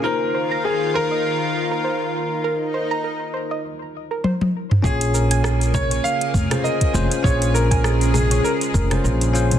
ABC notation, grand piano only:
X:1
M:4/4
L:1/8
Q:"Swing 16ths" 1/4=100
K:Bbm
V:1 name="Grand piano"
B2 A B4- B- | B4 z4 | A3 d f2 e2 | d B2 A B B2 z |]